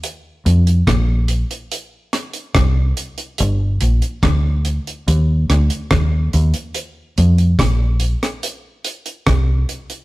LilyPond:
<<
  \new Staff \with { instrumentName = "Fingered electric bass" } { \clef bass \time 4/4 \key f \mixolydian \tempo 4 = 71 r8 f,8 bes,,8. r4 r16 c,8 r8 | g,,8 bes,,16 r16 d,8. r16 ees,8 d,16 r16 ees,8 ees,16 r16 | r8 f,8 bes,,8. r4 r16 c,8 r8 | }
  \new DrumStaff \with { instrumentName = "Drums" } \drummode { \time 4/4 hh8 hh16 hh16 <hh bd ss>8 hh16 hh16 hh8 <hh ss>16 hh16 <hh bd ss>8 hh16 hh16 | hh8 hh16 hh16 <hh bd ss>8 hh16 hh16 hh8 <hh ss>16 hh16 <hh bd ss>8 hh16 hh16 | hh8 hh16 hh16 <hh bd ss>8 hh16 <hh ss>16 hh8 hh16 hh16 <hh bd ss>8 hh16 hh16 | }
>>